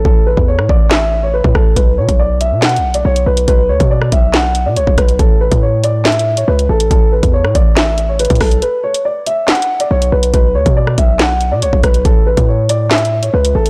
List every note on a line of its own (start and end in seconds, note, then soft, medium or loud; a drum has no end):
0.05 0.36 A1 loud
0.05 0.25 A4 medium
0.05 kick loud
0.26 0.46 B4 medium
0.37 0.60 E2 loud
0.37 kick medium
0.48 0.68 C#5 medium
0.59 0.69 A2 loud
0.59 cross-stick medium
0.69 1.41 A1 loud
0.69 0.89 D5 medium
0.69 kick loud
0.91 1.21 E5 medium
0.91 snare loud
0.91 clap loud
1.23 1.33 C#5 medium
1.34 1.53 B4 medium
1.44 1.54 A2 loud
1.44 kick loud
1.55 1.76 A1 loud
1.55 1.75 A4 medium
1.55 kick medium
1.55 cross-stick medium
1.76 1.99 B1 loud
1.76 1.96 B4 medium
1.76 kick loud
1.76 closed hi-hat medium
1.98 2.08 B2 loud
1.98 2.18 C#5 medium
2.09 2.53 B1 loud
2.09 kick medium
2.09 closed hi-hat medium
2.19 2.39 D5 medium
2.41 2.61 E5 medium
2.41 closed hi-hat medium
2.51 2.80 B2 loud
2.62 2.92 F#5 medium
2.62 snare loud
2.62 clap loud
2.62 closed hi-hat medium
2.69 closed hi-hat medium
2.76 3.04 B1 loud
2.76 closed hi-hat medium
2.94 3.04 D5 medium
2.94 closed hi-hat medium
3.05 3.26 B1 loud
3.05 3.25 C#5 medium
3.16 closed hi-hat medium
3.26 3.47 B1 loud
3.26 3.46 B4 medium
3.37 closed hi-hat medium
3.48 3.71 B1 loud
3.48 3.68 B4 medium
3.48 kick loud
3.48 closed hi-hat medium
3.69 3.80 D2 loud
3.69 3.89 C#5 medium
3.80 4.11 B2 loud
3.80 kick medium
3.80 closed hi-hat medium
3.91 4.11 D5 medium
4.02 cross-stick medium
4.12 4.67 B1 loud
4.12 4.32 E5 medium
4.12 kick loud
4.12 closed hi-hat medium
4.34 4.64 F#5 medium
4.34 snare loud
4.34 clap loud
4.55 closed hi-hat medium
4.66 4.78 B2 loud
4.66 4.76 D5 medium
4.76 4.87 B1 loud
4.76 4.96 C#5 medium
4.76 closed hi-hat medium
4.87 4.97 B1 loud
4.87 kick medium
4.98 5.18 B1 loud
4.98 5.18 B4 medium
4.98 kick medium
4.98 cross-stick medium
4.98 closed hi-hat medium
5.09 closed hi-hat medium
5.19 5.50 A1 loud
5.19 5.39 A4 medium
5.19 kick loud
5.19 closed hi-hat medium
5.41 5.61 B4 medium
5.52 6.44 A2 loud
5.52 kick medium
5.52 closed hi-hat medium
5.63 5.82 C#5 medium
5.84 6.03 D5 medium
5.84 closed hi-hat medium
6.05 6.35 E5 medium
6.05 snare loud
6.05 clap loud
6.05 closed hi-hat medium
6.12 closed hi-hat medium
6.19 closed hi-hat medium
6.37 6.47 C#5 medium
6.37 closed hi-hat medium
6.48 6.68 C#2 loud
6.48 6.68 B4 medium
6.59 closed hi-hat medium
6.69 6.90 A1 loud
6.69 6.89 A4 medium
6.80 closed hi-hat medium
6.91 7.22 A1 loud
6.91 7.10 A4 medium
6.91 kick loud
6.91 closed hi-hat medium
7.12 7.32 B4 medium
7.23 7.46 E2 loud
7.23 kick medium
7.23 closed hi-hat medium
7.33 7.53 C#5 medium
7.44 7.55 A2 loud
7.44 cross-stick medium
7.55 8.27 A1 loud
7.55 7.75 D5 medium
7.55 kick loud
7.55 closed hi-hat medium
7.76 8.07 E5 medium
7.76 snare loud
7.76 clap loud
7.98 closed hi-hat medium
8.09 8.19 C#5 medium
8.19 8.39 B4 medium
8.19 closed hi-hat medium
8.25 closed hi-hat medium
8.30 8.40 A2 loud
8.30 kick medium
8.30 closed hi-hat medium
8.35 closed hi-hat soft
8.41 8.61 B1 loud
8.41 8.61 A4 medium
8.41 kick medium
8.41 cross-stick loud
8.41 open hi-hat medium
8.51 closed hi-hat medium
8.62 8.82 B4 medium
8.62 closed hi-hat medium
8.84 9.03 C#5 medium
8.94 closed hi-hat medium
9.05 9.25 D5 medium
9.26 9.46 E5 medium
9.26 closed hi-hat medium
9.48 9.78 F#5 medium
9.48 snare loud
9.48 clap loud
9.48 closed hi-hat medium
9.55 closed hi-hat medium
9.62 closed hi-hat medium
9.80 9.90 D5 medium
9.80 closed hi-hat medium
9.91 10.11 B1 loud
9.91 10.10 C#5 medium
10.02 closed hi-hat medium
10.12 10.33 B1 loud
10.12 10.32 B4 medium
10.23 closed hi-hat medium
10.34 10.57 B1 loud
10.34 10.53 B4 medium
10.34 kick loud
10.34 closed hi-hat medium
10.55 10.65 D2 loud
10.55 10.75 C#5 medium
10.66 10.97 B2 loud
10.66 kick medium
10.66 closed hi-hat medium
10.77 10.96 D5 medium
10.87 cross-stick medium
10.98 11.53 B1 loud
10.98 11.18 E5 medium
10.98 kick loud
10.98 closed hi-hat medium
11.19 11.50 F#5 medium
11.19 snare loud
11.19 clap loud
11.41 closed hi-hat medium
11.51 11.64 B2 loud
11.51 11.61 D5 medium
11.62 11.72 B1 loud
11.62 11.82 C#5 medium
11.62 closed hi-hat medium
11.73 11.83 B1 loud
11.73 kick loud
11.83 12.04 B1 loud
11.83 12.03 B4 medium
11.83 kick medium
11.83 cross-stick medium
11.83 closed hi-hat medium
11.94 closed hi-hat medium
12.05 12.36 A1 loud
12.05 12.25 A4 medium
12.05 kick loud
12.05 closed hi-hat medium
12.26 12.46 B4 medium
12.37 13.30 A2 loud
12.37 kick medium
12.37 closed hi-hat medium
12.48 12.68 C#5 medium
12.69 12.89 D5 medium
12.69 closed hi-hat medium
12.91 13.21 E5 medium
12.91 snare loud
12.91 clap loud
12.91 closed hi-hat medium
12.98 closed hi-hat medium
13.05 closed hi-hat medium
13.23 13.33 C#5 medium
13.23 closed hi-hat medium
13.34 13.54 C#2 loud
13.34 13.53 B4 medium
13.45 closed hi-hat medium
13.55 13.70 A1 loud
13.55 13.70 A4 medium
13.66 closed hi-hat medium